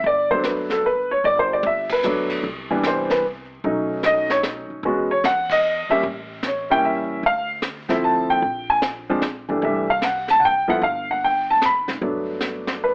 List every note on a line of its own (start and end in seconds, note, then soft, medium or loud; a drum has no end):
0.04 1.20 G1 medium
0.04 0.31 D5 medium
0.04 brush sweep soft
0.31 0.82 F#3 medium
0.31 0.82 A3 medium
0.31 0.82 B3 medium
0.31 0.82 D4 medium
0.31 0.44 C5 medium
0.44 0.70 B4 medium
0.44 snare medium
0.44 hi-hat pedal medium
0.70 0.84 A4 medium
0.70 snare soft
0.86 1.11 B4 medium
1.11 1.24 C#5 medium
1.23 2.40 G1 medium
1.23 1.37 D5 medium
1.23 brush sweep soft
1.39 1.51 C5 medium
1.53 1.65 D5 medium
1.63 1.91 E5 medium
1.63 high tom soft
1.89 2.35 B4 medium
1.89 kick medium
1.89 ride medium
2.03 2.44 F#3 medium
2.03 2.44 A3 medium
2.03 2.44 B3 medium
2.03 2.44 D4 medium
2.03 hi-hat pedal medium
2.30 kick medium
2.30 crash medium
2.43 3.59 C2 medium
2.43 brush sweep soft
2.70 3.21 E3 medium
2.70 3.21 G3 medium
2.70 3.21 B3 medium
2.70 3.21 D4 medium
2.83 3.11 C5 medium
2.83 snare medium
2.83 hi-hat pedal medium
3.10 3.24 B4 medium
3.10 snare soft
3.63 4.66 B1 medium
3.63 4.75 F#3 medium
3.63 4.76 A3 medium
3.63 4.76 C#4 medium
3.63 4.76 D#4 medium
3.63 brush sweep soft
4.03 4.30 D#5 medium
4.03 snare medium
4.03 hi-hat pedal medium
4.30 4.39 C#5 medium
4.30 snare soft
4.43 snare medium
4.43 hi-hat pedal soft
4.70 muted upright bass stroke soft
4.83 5.85 E2 medium
4.83 5.08 G#3 medium
4.83 5.08 B3 medium
4.83 5.08 C#4 medium
4.83 5.08 F#4 medium
4.83 brush sweep soft
5.11 5.23 C#5 medium
5.24 5.50 F#5 medium
5.24 snare medium
5.24 hi-hat pedal soft
5.50 5.88 D#5 medium
5.50 kick medium
5.50 ride medium
5.89 6.02 G3 medium
5.89 6.02 A#3 medium
5.89 6.02 C#4 medium
5.89 6.02 G4 medium
5.89 6.03 E5 loud
5.89 muted upright bass stroke soft
5.89 kick soft
6.03 7.19 A1 medium
6.03 brush sweep soft
6.43 6.70 C#5 medium
6.43 snare medium
6.43 hi-hat pedal medium
6.70 7.20 G3 medium
6.70 7.21 A#3 medium
6.70 7.21 C#4 medium
6.70 7.21 E4 medium
6.70 6.83 G5 medium
6.85 7.21 E5 medium
7.22 8.39 D2 medium
7.22 brush sweep soft
7.26 7.50 F5 medium
7.62 snare medium
7.62 hi-hat pedal medium
7.89 8.40 F3 medium
7.89 8.40 A3 medium
7.89 8.40 C4 medium
7.89 8.40 E4 medium
7.89 8.03 E5 medium
7.89 snare soft
8.04 8.29 A5 medium
8.30 8.67 G5 medium
8.42 9.45 A#1 medium
8.42 brush sweep soft
8.70 8.78 G#5 medium
8.82 snare medium
8.82 hi-hat pedal medium
9.10 9.21 F3 medium
9.10 9.21 G#3 medium
9.10 9.21 C4 medium
9.10 9.22 D4 medium
9.22 snare medium
9.22 hi-hat pedal soft
9.48 9.61 G2 medium
9.48 9.61 E3 medium
9.48 9.61 G3 medium
9.48 9.61 A3 medium
9.48 9.62 D4 medium
9.62 10.64 C2 medium
9.62 9.86 E3 medium
9.62 9.86 G3 medium
9.62 9.86 A3 medium
9.62 9.87 D4 medium
9.62 9.89 E5 medium
9.62 brush sweep medium
9.90 10.02 F5 medium
10.02 10.29 F#5 medium
10.02 snare medium
10.02 hi-hat pedal medium
10.28 10.42 A5 loud
10.28 snare soft
10.40 10.43 F#5 medium
10.45 10.69 G5 medium
10.68 10.80 F3 medium
10.68 10.80 A3 medium
10.68 10.80 B3 medium
10.68 10.81 E4 medium
10.68 10.82 F#5 medium
10.68 muted upright bass stroke soft
10.82 11.84 G1 medium
10.82 11.08 F5 medium
10.82 brush sweep soft
11.11 11.23 F#5 medium
11.24 11.49 G5 medium
11.50 11.62 A5 medium
11.62 11.95 B5 medium
11.62 snare medium
11.62 hi-hat pedal medium
11.88 12.00 F1 medium
11.88 snare soft
12.01 12.94 G1 medium
12.01 12.94 F#3 soft
12.01 12.94 A3 soft
12.01 12.94 B3 soft
12.01 12.94 D4 medium
12.01 brush sweep soft
12.41 snare medium
12.41 hi-hat pedal medium
12.67 snare soft
12.84 12.94 B4 medium